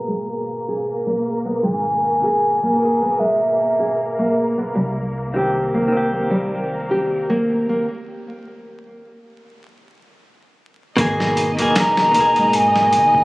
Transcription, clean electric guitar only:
0, 0, Header, 1, 2, 480
1, 0, Start_track
1, 0, Key_signature, 5, "minor"
1, 0, Tempo, 779221
1, 1006, Time_signature, 4, 2, 24, 8
1, 8156, End_track
2, 0, Start_track
2, 0, Title_t, "Clean electric guitar"
2, 0, Program_c, 0, 27
2, 0, Note_on_c, 0, 47, 62
2, 0, Note_on_c, 0, 68, 63
2, 0, Note_on_c, 0, 70, 56
2, 1335, Note_off_c, 0, 47, 0
2, 1349, Note_off_c, 0, 70, 0
2, 1362, Note_off_c, 0, 68, 0
2, 1367, Note_on_c, 0, 47, 64
2, 1381, Note_on_c, 0, 70, 59
2, 1393, Note_on_c, 0, 68, 70
2, 1689, Note_off_c, 0, 47, 0
2, 1697, Note_on_c, 0, 47, 62
2, 1702, Note_off_c, 0, 70, 0
2, 1707, Note_off_c, 0, 68, 0
2, 1723, Note_on_c, 0, 70, 56
2, 1753, Note_on_c, 0, 68, 69
2, 2898, Note_off_c, 0, 47, 0
2, 2912, Note_off_c, 0, 70, 0
2, 2927, Note_off_c, 0, 68, 0
2, 3289, Note_on_c, 0, 51, 62
2, 3303, Note_on_c, 0, 60, 55
2, 3317, Note_on_c, 0, 67, 73
2, 3614, Note_off_c, 0, 51, 0
2, 3621, Note_on_c, 0, 51, 65
2, 3623, Note_off_c, 0, 60, 0
2, 3630, Note_off_c, 0, 67, 0
2, 3649, Note_on_c, 0, 60, 57
2, 3676, Note_on_c, 0, 67, 68
2, 4834, Note_off_c, 0, 51, 0
2, 4847, Note_off_c, 0, 60, 0
2, 4861, Note_off_c, 0, 67, 0
2, 6755, Note_on_c, 0, 47, 97
2, 6769, Note_on_c, 0, 58, 85
2, 6782, Note_on_c, 0, 68, 109
2, 7080, Note_off_c, 0, 47, 0
2, 7087, Note_off_c, 0, 58, 0
2, 7093, Note_off_c, 0, 68, 0
2, 7127, Note_on_c, 0, 47, 73
2, 7140, Note_on_c, 0, 58, 66
2, 7155, Note_on_c, 0, 68, 78
2, 7454, Note_off_c, 0, 47, 0
2, 7461, Note_off_c, 0, 58, 0
2, 7462, Note_on_c, 0, 47, 75
2, 7469, Note_off_c, 0, 68, 0
2, 7490, Note_on_c, 0, 58, 65
2, 7518, Note_on_c, 0, 68, 81
2, 8156, Note_off_c, 0, 47, 0
2, 8156, Note_off_c, 0, 58, 0
2, 8156, Note_off_c, 0, 68, 0
2, 8156, End_track
0, 0, End_of_file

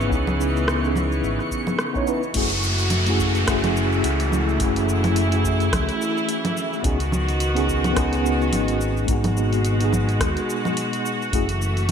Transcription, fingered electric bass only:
0, 0, Header, 1, 2, 480
1, 0, Start_track
1, 0, Tempo, 560748
1, 97, Time_signature, 4, 2, 24, 8
1, 10199, End_track
2, 0, Start_track
2, 0, Title_t, "Fingered electric bass"
2, 0, Program_c, 0, 33
2, 96, Note_on_c, 0, 37, 92
2, 1019, Note_off_c, 0, 37, 0
2, 1053, Note_on_c, 0, 32, 91
2, 1160, Note_off_c, 0, 32, 0
2, 2012, Note_on_c, 0, 30, 93
2, 2937, Note_off_c, 0, 30, 0
2, 2979, Note_on_c, 0, 30, 90
2, 3421, Note_off_c, 0, 30, 0
2, 3452, Note_on_c, 0, 37, 108
2, 3897, Note_off_c, 0, 37, 0
2, 3939, Note_on_c, 0, 30, 98
2, 4861, Note_off_c, 0, 30, 0
2, 4899, Note_on_c, 0, 37, 98
2, 5004, Note_off_c, 0, 37, 0
2, 5858, Note_on_c, 0, 37, 96
2, 6780, Note_off_c, 0, 37, 0
2, 6821, Note_on_c, 0, 37, 98
2, 7262, Note_off_c, 0, 37, 0
2, 7294, Note_on_c, 0, 32, 104
2, 7739, Note_off_c, 0, 32, 0
2, 7775, Note_on_c, 0, 32, 93
2, 8699, Note_off_c, 0, 32, 0
2, 8735, Note_on_c, 0, 39, 94
2, 8842, Note_off_c, 0, 39, 0
2, 9696, Note_on_c, 0, 30, 97
2, 10199, Note_off_c, 0, 30, 0
2, 10199, End_track
0, 0, End_of_file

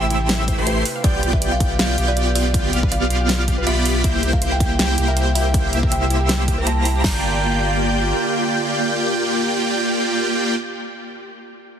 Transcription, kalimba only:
0, 0, Header, 1, 2, 480
1, 0, Start_track
1, 0, Tempo, 375000
1, 1334, Time_signature, 4, 2, 24, 8
1, 15100, End_track
2, 0, Start_track
2, 0, Title_t, "Kalimba"
2, 0, Program_c, 0, 108
2, 855, Note_on_c, 0, 71, 94
2, 1156, Note_off_c, 0, 71, 0
2, 1332, Note_on_c, 0, 74, 96
2, 1557, Note_off_c, 0, 74, 0
2, 1705, Note_on_c, 0, 76, 88
2, 1845, Note_off_c, 0, 76, 0
2, 1944, Note_on_c, 0, 77, 99
2, 2166, Note_off_c, 0, 77, 0
2, 2294, Note_on_c, 0, 77, 92
2, 2518, Note_off_c, 0, 77, 0
2, 2665, Note_on_c, 0, 74, 99
2, 2886, Note_off_c, 0, 74, 0
2, 3012, Note_on_c, 0, 74, 94
2, 3237, Note_off_c, 0, 74, 0
2, 3733, Note_on_c, 0, 77, 89
2, 3958, Note_off_c, 0, 77, 0
2, 4695, Note_on_c, 0, 76, 96
2, 4997, Note_off_c, 0, 76, 0
2, 5175, Note_on_c, 0, 76, 95
2, 5399, Note_off_c, 0, 76, 0
2, 5545, Note_on_c, 0, 77, 92
2, 5685, Note_off_c, 0, 77, 0
2, 5787, Note_on_c, 0, 79, 96
2, 6007, Note_off_c, 0, 79, 0
2, 6137, Note_on_c, 0, 79, 96
2, 6359, Note_off_c, 0, 79, 0
2, 6506, Note_on_c, 0, 76, 99
2, 6726, Note_off_c, 0, 76, 0
2, 6851, Note_on_c, 0, 76, 96
2, 7077, Note_off_c, 0, 76, 0
2, 7574, Note_on_c, 0, 79, 92
2, 7798, Note_off_c, 0, 79, 0
2, 8535, Note_on_c, 0, 81, 92
2, 8837, Note_off_c, 0, 81, 0
2, 9011, Note_on_c, 0, 82, 90
2, 13507, Note_off_c, 0, 82, 0
2, 15100, End_track
0, 0, End_of_file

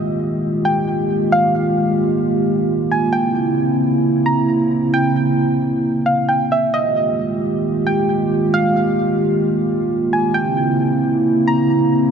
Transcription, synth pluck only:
0, 0, Header, 1, 2, 480
1, 0, Start_track
1, 0, Key_signature, -4, "minor"
1, 0, Tempo, 451128
1, 1411, Time_signature, 4, 2, 24, 8
1, 12885, End_track
2, 0, Start_track
2, 0, Title_t, "Synth pluck"
2, 0, Program_c, 0, 84
2, 0, Note_on_c, 0, 75, 100
2, 646, Note_off_c, 0, 75, 0
2, 692, Note_on_c, 0, 79, 80
2, 1369, Note_off_c, 0, 79, 0
2, 1408, Note_on_c, 0, 77, 109
2, 2327, Note_off_c, 0, 77, 0
2, 3101, Note_on_c, 0, 80, 71
2, 3324, Note_off_c, 0, 80, 0
2, 3325, Note_on_c, 0, 79, 85
2, 4486, Note_off_c, 0, 79, 0
2, 4531, Note_on_c, 0, 82, 75
2, 5208, Note_off_c, 0, 82, 0
2, 5252, Note_on_c, 0, 79, 98
2, 6409, Note_off_c, 0, 79, 0
2, 6447, Note_on_c, 0, 77, 76
2, 6677, Note_off_c, 0, 77, 0
2, 6688, Note_on_c, 0, 79, 75
2, 6917, Note_off_c, 0, 79, 0
2, 6935, Note_on_c, 0, 76, 79
2, 7161, Note_off_c, 0, 76, 0
2, 7168, Note_on_c, 0, 75, 98
2, 8327, Note_off_c, 0, 75, 0
2, 8369, Note_on_c, 0, 79, 82
2, 9047, Note_off_c, 0, 79, 0
2, 9084, Note_on_c, 0, 77, 110
2, 10005, Note_off_c, 0, 77, 0
2, 10778, Note_on_c, 0, 80, 77
2, 11003, Note_off_c, 0, 80, 0
2, 11005, Note_on_c, 0, 79, 83
2, 12165, Note_off_c, 0, 79, 0
2, 12209, Note_on_c, 0, 82, 79
2, 12885, Note_off_c, 0, 82, 0
2, 12885, End_track
0, 0, End_of_file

